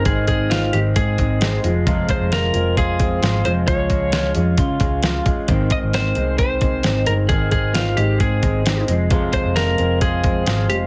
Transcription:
<<
  \new Staff \with { instrumentName = "Lead electric guitar" } { \time 4/4 \key aes \major \tempo 4 = 132 aes'8 aes'8 f'8 g'8 aes'4. r8 | r8 c''8 bes'4 aes'4. c''8 | des''4. r2 r8 | r8 ees''8 c''4 c''4. bes'8 |
aes'8 aes'8 f'8 g'8 aes'4. r8 | r8 c''8 bes'4 aes'4. g'8 | }
  \new Staff \with { instrumentName = "Clean electric guitar" } { \time 4/4 \key aes \major <ees aes c'>8 ees8 c'8 aes8 c'8 aes8 c'8 aes8 | <aes f'>8 aes8 f'8 c'8 f'8 c'8 f'8 aes8 | <aes f'>8 aes8 f'8 des'8 f'8 des'8 f'8 aes8 | <ees c'>8 ees8 c'8 aes8 c'8 aes8 c'8 ees8 |
<ees c'>8 ees4 aes8 c'8 aes8 c'8 aes8 | <aes f'>4 f'8 c'8 f'8 c'8 f'8 aes8 | }
  \new Staff \with { instrumentName = "Steel-string acoustic guitar" } { \time 4/4 \key aes \major <aes, ees aes c' ees' aes'>4. <aes c' ees' aes'>4 <aes c' ees' aes'>8 <aes c' ees' aes'>8 <f aes f' aes'>8 | <f, c f aes f' aes'>4. <f aes f' aes'>4 <f aes f' aes'>8 <f aes f' aes'>8 <f aes f' aes'>8 | <des f aes f' aes'>4. <aes f' aes'>4 <aes f' aes'>8 <f aes f' aes'>8 <aes f' aes'>8 | <aes, ees aes c' ees' aes'>4. <aes c' ees' aes'>4 <aes c' ees' aes'>8 <aes c' ees' aes'>8 <aes c' ees' aes'>8 |
<aes, ees aes c' ees' aes'>4. <aes c' ees' aes'>4 <aes c' ees' aes'>8 <aes c' ees' aes'>8 <f aes c' aes'>8 | <f, c f aes c' aes'>4. <f aes c' aes'>4 <f aes c' aes'>8 <f aes c' aes'>8 <f aes c' aes'>8 | }
  \new Staff \with { instrumentName = "Picked electric bass" } { \clef bass \time 4/4 \key aes \major aes,,4. aes,,8 aes,8 aes,,4 f,,8~ | f,,8 r16 f,,8. f,,4. aes,,8 f,,8 | des,4. f,8 des8 des,4 r8 | aes,,8 r16 aes,,8. c,4. aes,,8 g,,8 |
aes,,4. aes,,8 aes,8 aes,,4 f,,8~ | f,,8 r16 f,,8. f,,4. aes,,8 f,,8 | }
  \new DrumStaff \with { instrumentName = "Drums" } \drummode { \time 4/4 <hh bd>8 <hh bd>8 <hh sn>8 hh8 <hh bd>8 <hh bd>8 <hh sn>8 hh8 | <hh bd>8 <hh bd>8 <hh sn>8 hh8 <hh bd>8 <hh bd>8 <hh sn>8 hh8 | <hh bd>8 <hh bd>8 <hh sn>8 hh8 <hh bd>8 <hh bd>8 <hh sn>8 <hh bd>8 | <hh bd>8 <hh bd>8 <hh sn>8 hh8 <hh bd>8 <hh bd>8 <hh sn>8 hh8 |
<hh bd>8 <hh bd>8 <hh sn>8 hh8 <hh bd>8 <hh bd>8 <hh sn>8 hh8 | <hh bd>8 <hh bd>8 <hh sn>8 hh8 <hh bd>8 <hh bd>8 <hh sn>8 hh8 | }
>>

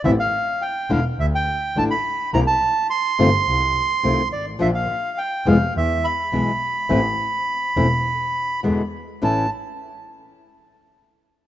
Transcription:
<<
  \new Staff \with { instrumentName = "Bandoneon" } { \time 4/4 \key a \minor \tempo 4 = 105 e''16 f''8. g''8 f''8 e''16 g''8. a''16 b''8. | bes''16 a''8. c'''2~ c'''8 d''8 | e''16 f''8. g''8 f''8 e''8 b''4.~ | b''2. r4 |
a''8 r2. r8 | }
  \new Staff \with { instrumentName = "Nylon-string guitar" } { \time 4/4 \key a \minor <e b c' e'>8 r4 <d a d' e'>8 r4 <d a d' e'>8 r8 | <c e bes c' e'>8 r4 <c dis a c' f'>8 r4 <c ees a c' f'>8 r8 | <f bes d' f'>8 r4 <b, e gis b e'>8 r4 <b, e gis b e'>8 r8 | <e a c' e'>8 r4 <e a c' e'>8 r4 <b, d gis b e'>8 r8 |
<a, e a cis' e'>8 r2. r8 | }
  \new Staff \with { instrumentName = "Double bass" } { \clef bass \time 4/4 \key a \minor a,,8 r4 e,,8 d,8 r8 a,,8 r8 | c,8 r4 g,,8 c,8 r8 c,8 gis,,8 | bes,,8 r4 f,,8 e,8 r8 b,,8 r8 | a,,8 r4 e,,8 r4 e,8 r8 |
a,,8 r2. r8 | }
>>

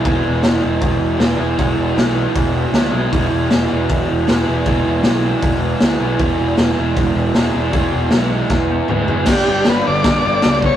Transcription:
<<
  \new Staff \with { instrumentName = "Transistor combo organ" } { \time 4/4 \key e \mixolydian \tempo 4 = 156 r1 | r1 | r1 | r1 |
r1 | r1 | g'4 b'8 d''2 cis''8 | }
  \new Staff \with { instrumentName = "Overdriven electric guitar" } { \time 4/4 \key e \mixolydian <e gis b e' gis'>4 <e gis b e' gis'>8 <b e' gis'>4. <gis b e' gis'>8 <b e' gis'>8 | <e gis b e' gis'>4 <e gis b e' gis'>8 <b e' gis'>4. <gis b e' gis'>8 <b e' gis'>8 | <e gis b e' gis'>4 <e gis b e' gis'>8 <b e' gis'>4. <gis b e' gis'>8 <b e' gis'>8 | <e gis b e' gis'>4 <e gis b e' gis'>8 <b e' gis'>4. <gis b e' gis'>8 <b e' gis'>8 |
<e gis b e' gis'>4 <e gis b e' gis'>8 <b e' gis'>4. <gis b e' gis'>8 <b e' gis'>8 | <e gis b e' gis'>4 <e gis b e' gis'>8 <b e' gis'>4. <gis b e' gis'>8 <b e' gis'>8 | <g, d g b d'>8 <g, d g b d'>8 <g, d g b d'>8 <g, d g b d'>8 <g, d g b d'>8 <g, d g b d'>8 <g, d g b d'>8 <g, d g b d'>8 | }
  \new Staff \with { instrumentName = "Picked electric bass" } { \clef bass \time 4/4 \key e \mixolydian e,,8 e,,8 e,,8 e,,8 e,,8 e,,8 e,,8 e,,8 | e,,8 e,,8 b,,4 e,,4 d,8 b,,8 | e,,8 e,,8 e,,8 e,,8 e,,8 e,,8 e,,8 e,,8 | e,,8 e,,8 b,,4 e,,4 d,8 b,,8 |
e,,8 e,,8 e,,8 e,,8 e,,8 e,,8 e,,8 e,,8 | e,,8 e,,8 b,,4 e,,4 d,8 fis,,8 | g,,8 g,,8 g,,8 g,,8 g,,8 g,,8 cis,4 | }
  \new DrumStaff \with { instrumentName = "Drums" } \drummode { \time 4/4 <hho bd>4 <hho sn>4 <hho bd>4 <hho sn>4 | <hho bd>4 <hho sn>4 <hho bd>4 <hho sn>4 | <hho bd>4 <hho sn>4 <hho bd>4 <hho sn>4 | <hho bd>4 <hho sn>4 <hho bd>4 <hho sn>4 |
<hho bd>4 <hho sn>4 <hho bd>4 <hho sn>4 | <hho bd>4 <hho sn>4 <bd sn>4 toml8 tomfh8 | <cymc bd sn>4 <cymc sn>4 <cymc bd sn>4 <cymc sn>8 bd8 | }
>>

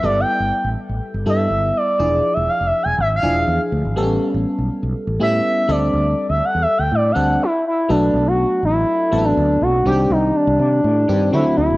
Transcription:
<<
  \new Staff \with { instrumentName = "Analog synth lead" } { \time 4/4 \key b \phrygian \tempo 4 = 122 \tuplet 3/2 { d''8 g''4~ } g''8 r4 e''4 d''8~ | \tuplet 3/2 { d''4 e''8 f''8 e''8 gis''8 e''8 f''4~ } f''8 r8 | r2 r8 e''4 d''8~ | \tuplet 3/2 { d''4 e''8 fis''8 e''8 g''8 d''8 fis''4 } e'8 e'8 |
d'8. fis'8. e'4~ e'16 d'8. fis'8 | g'8 ees'8 d'8 d'4. e'8 e'8 | }
  \new Staff \with { instrumentName = "FM electric piano" } { \time 4/4 \key b \phrygian <g b e' a'>4. r4 <g b e' a'>4 r8 | <f d' e' gis'>4. r4 <f d' e' gis'>4 r8 | <g b c' cis' a'>4. r4 <g b cis' e'>4 <g c' d' a'>8~ | <g c' d' a'>4 r4. <g c' d' a'>8 r4 |
<fis a b d' a'>4. r4 <fis a b c' d' a'>4 r8 | <ees g c' d' fis' g'>4. r4 <ees g c' d' g'>8 <d fis a c' fis'>4 | }
  \new Staff \with { instrumentName = "Fretless electric bass" } { \clef bass \time 4/4 \key b \phrygian g,,8 r16 g,,16 r16 a,,16 r16 a,,16 r16 g,,16 g,8 g,,8 r8 | e,,8 r16 e,,16 r16 f,,16 r16 e,,16 gis,,8 e,,8 e,16 r16 d,16 gis,,16 | a,,8 r16 a,,16 r16 b,,16 r16 b,,16 r16 a,,16 a,8 r8 d,8 | d,8 r16 d,16 r16 e,16 r16 d,16 a,8 d,8 r4 |
b,,8 b,,8. r16 a,,8 r8 a,,8 d,8 b,,8 | c,8 c,8 r16 c,16 c8 a,8 g,8 d16 r16 d,16 fis,,16 | }
>>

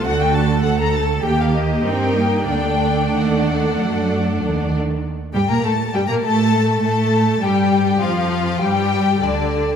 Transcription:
<<
  \new Staff \with { instrumentName = "Violin section" } { \time 4/4 \key g \minor \tempo 4 = 100 fis''16 g''16 a''8 fis''16 bes''16 a''8 g''16 f''16 ees''8 g''4 | g''4 fis''2~ fis''8 r8 | r8 g''16 bes''16 a''8 g''16 bes''16 a''4 a''4 | g''4 f''4 g''4 d''4 | }
  \new Staff \with { instrumentName = "Violin section" } { \time 4/4 \key g \minor a'2 g'4 <g' bes'>4 | <a' d''>2.~ <a' d''>8 r8 | r8 g'16 bes'16 a'8 g'16 bes'16 a'4 a'4 | g'4 f'4 g'4 d'4 | }
  \new Staff \with { instrumentName = "Viola section" } { \time 4/4 \key g \minor << { fis'4 a'4 g'4 ees'4 | d'2.~ d'8 r8 | r8 g16 bes16 a8 g16 bes16 a4 a4 | g4 f4 g4 d4 | } \\ { a2 bes4 c'8 bes8 | a2.~ a8 r8 | r1 | r1 | } >> }
  \new Staff \with { instrumentName = "Cello section" } { \clef bass \time 4/4 \key g \minor d4 d,4 ees4 g4 | d4 ees4 fis4 ees4 | r8 g16 bes16 a8 g16 bes16 a4 a4 | g4 f4 g4 d4 | }
  \new Staff \with { instrumentName = "Double bass section" } { \clef bass \time 4/4 \key g \minor d,4 d,4 ees,4 g,4 | d,4 ees,4 fis,4 ees,4 | r8 g,16 bes,16 a,8 g,16 bes,16 a,4 a,4 | g,4 f,4 g,4 d,4 | }
>>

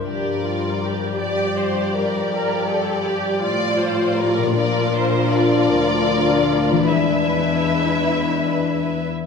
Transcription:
<<
  \new Staff \with { instrumentName = "Violin section" } { \time 6/8 \key g \minor \tempo 4. = 53 d''4. d''4.~ | d''2. | d''8 c''8 d''2 | e''2~ e''8. r16 | }
  \new Staff \with { instrumentName = "Violin section" } { \time 6/8 \key g \minor bes'4. d''8 c''8 bes'8 | g'4. d''8 c''8 bes'8 | bes'2. | b'2~ b'8. r16 | }
  \new Staff \with { instrumentName = "Viola section" } { \time 6/8 \key g \minor g'8 f'8 g'2 | bes'8 a'8 g'8 f'4. | f'2. | e'2~ e'8. r16 | }
  \new Staff \with { instrumentName = "Harp" } { \time 6/8 \key g \minor <g, d' f' bes'>2.~ | <g, d' f' bes'>2. | <bes, bes d' f'>2. | <e b d' gis'>2. | }
  \new Staff \with { instrumentName = "French horn section" } { \clef bass \time 6/8 \key g \minor << { g2.~ | g2. | d'2.~ | d'2~ d'8 r8 | } \\ { f2.~ | f2. | f2. | gis2~ gis8 r8 | } >> }
  \new Staff \with { instrumentName = "Cello section" } { \clef bass \time 6/8 \key g \minor g,2.~ | g,4. a,4. | bes,4. d,4. | e,2~ e,8. r16 | }
>>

